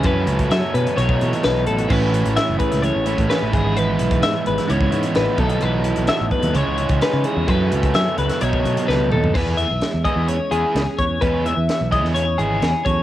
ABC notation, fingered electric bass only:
X:1
M:4/4
L:1/16
Q:1/4=129
K:E
V:1 name="Fingered electric bass" clef=bass
F,,2 C,,2 F, z B,, z B,,,2 B,, z B,,,2 A,,,2 | A,,,3 A,,, z F,,, z C,,2 A,,,2 A,,, z A,,, G,,,2- | G,,,2 B,,,2 G,, z G,,, z C,,2 G,, z A,,, z B,,,2 | B,,,3 B,,, z A,,, z D,, C,, C,,2 C,, z C, z E,, |
F,,2 C,,2 F, z C,, z B,,,2 B,, z C,,2 D,,2 | E,,3 B,,, z E,, z E,,2 z E,, z C,, z E,,2 | E,,3 E,, z B,,,2 E,,3 G,,,2 E,, z E,,2 |]